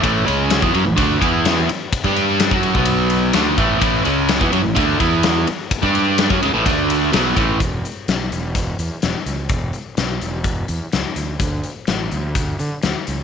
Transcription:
<<
  \new Staff \with { instrumentName = "Distorted electric guitar" } { \clef bass \time 4/4 \key e \dorian \tempo 4 = 127 <a, e a>8 <cis gis cis'>8. <e b>16 <fis cis'>16 <a, e>16 <d a d'>8 <e b e'>4 r8 | r16 <g d' g'>4 <fis cis' fis'>8 <b, fis b>4~ <b, fis b>16 <d a d'>8 <a, e a>8 | <a, e a>8 <cis gis cis'>8. <e b>16 <fis cis'>16 <a, e>16 <d a d'>8 <e b e'>4 r8 | r16 <g d' g'>4 <fis cis'>16 <cis gis>16 <a, e>16 <d a d'>4 <b, fis b>8 <a, e a>8 |
r1 | r1 | r1 | }
  \new Staff \with { instrumentName = "Fingered electric bass" } { \clef bass \time 4/4 \key e \dorian a,,8 cis,8. e,16 fis,16 a,,16 d,8 e,4 r8 | r16 g,4 fis,8 b,,4~ b,,16 d,8 a,,8 | a,,8 cis,8. e,16 fis,16 a,,16 d,8 e,4 r8 | r16 g,4 fis,16 cis,16 a,,16 d,4 b,,8 a,,8 |
e,,8 r8 b,,8 e,,4 e,16 r16 e,,16 r16 cis,8 | e,,8 r8 b,,8 e,,4 e,16 r16 cis,16 r16 d,8 | d,8 r8 a,,8 d,4 d16 r16 d,16 r16 cis,8 | }
  \new DrumStaff \with { instrumentName = "Drums" } \drummode { \time 4/4 <bd cymr>8 cymr8 <cymr sn>16 bd16 cymr8 <bd cymr>8 <bd cymr>8 <cymr sn>8 cymr8 | <bd cymr>16 bd16 cymr8 <cymr sn>16 bd16 cymr16 bd16 cymr8 cymr8 <cymr sn>8 <bd cymr>8 | <bd cymr>8 cymr8 <cymr sn>16 bd16 cymr8 <bd cymr>8 <bd cymr>8 <cymr sn>8 cymr8 | <bd cymr>16 bd16 cymr8 <cymr sn>16 bd16 cymr8 <bd cymr>8 cymr8 <cymr sn>8 <bd cymr>8 |
<hh bd>8 hh8 <hh sn>8 hh8 <hh bd>8 hh8 <hh sn>8 hh8 | <hh bd>8 hh8 <hh sn>8 hh8 <hh bd>8 hh8 <hh sn>8 hh8 | <hh bd>8 hh8 <hh sn>8 hh8 <hh bd>8 hh8 <hh sn>8 hh8 | }
>>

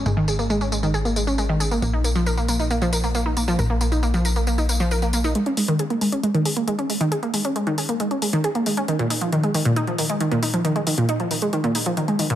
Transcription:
<<
  \new Staff \with { instrumentName = "Synth arpeggio sound" } { \time 4/4 \key ais \phrygian \tempo 4 = 136 gis16 dis16 gis'16 ais16 gis16 cis'16 gis16 dis16 gis'16 ais16 gis16 cis'16 gis16 dis16 gis'16 ais16 | ais16 dis'16 ais16 eis16 ais'16 ais16 ais16 dis'16 ais16 eis16 ais'16 ais16 ais16 dis'16 ais16 eis16 | ais'16 ais16 ais16 dis'16 ais16 eis16 ais'16 ais16 ais16 dis'16 ais16 eis16 ais'16 ais16 ais16 dis'16 | gis16 cis'16 gis16 dis16 gis'16 ais16 gis16 cis'16 gis16 dis16 gis'16 ais16 gis16 cis'16 gis16 dis16 |
gis'16 ais16 gis16 cis'16 gis16 dis16 gis'16 ais16 gis16 cis'16 gis16 dis16 gis'16 ais16 gis16 cis'16 | dis16 ais,16 dis'16 eis16 dis16 gis16 dis16 ais,16 dis'16 eis16 dis16 gis16 dis16 ais,16 dis'16 eis16 | dis16 gis16 dis16 ais,16 dis'16 eis16 dis16 gis16 dis16 ais,16 dis'16 eis16 dis16 gis16 dis16 ais,16 | }
  \new Staff \with { instrumentName = "Analog synth bass" } { \clef bass \time 4/4 \key ais \phrygian gis,,1 | ais,,1 | ais,,1 | r1 |
r1 | r1 | r1 | }
  \new DrumStaff \with { instrumentName = "Drums" } \drummode { \time 4/4 tamb8 tamb16 tamb16 tamb16 tamb16 tamb16 tamb16 tamb16 tamb16 tamb16 tamb16 tamb8 tamb16 tamb16 | tamb8 tamb16 tamb16 tamb16 tamb16 tamb16 tamb16 tamb16 tamb16 tamb16 tamb16 tamb8 tamb16 tamb16 | tamb8 tamb16 tamb16 tamb16 tamb16 tamb16 tamb16 tamb16 tamb16 tamb16 tamb16 tamb16 tamb16 tamb16 tamb16 | hh16 hh16 hho16 hh16 hh16 hh16 hho16 hh16 hh16 hh16 hho16 hh16 hh16 hh16 hho16 hh16 |
hh16 hh16 hho16 hh16 hh16 hh16 hho16 hh16 hh16 hh16 hho16 hh16 hh16 hh16 hho16 hh16 | hh16 hh16 hho16 hh16 hh16 hh16 hho16 hh16 hh16 hh16 hho16 hh16 hh16 hh16 hho16 hh16 | hh16 hh16 hho16 hh16 hh16 hh16 hho16 hh16 hh16 hh16 hho16 hh16 hh16 hh16 hho16 hh16 | }
>>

